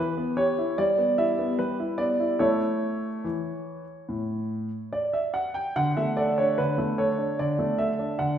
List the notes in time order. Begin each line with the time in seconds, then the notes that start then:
Already playing: E3 B4
0.17 B3
0.37 G4 C#5
0.58 E4
0.78 G3 D5
0.98 B3
1.18 E4 E5
1.39 B3
1.59 G3 B4
1.80 E4
1.98 B3 D5
2.20 E4
2.39 A3 E4 A4 C#5
3.24 E3
4.09 A2
4.93 D5
5.13 E5
5.34 F#5
5.54 G5
5.76 D3 F#5
5.97 A3 E5
6.17 A4 D5
6.38 D4 C#5
6.58 D3 B4
6.78 A3
6.98 A4 C#5
7.18 D4
7.39 D3 D5
7.59 A3
7.78 A4 E5
7.99 D4
8.19 D3 F#5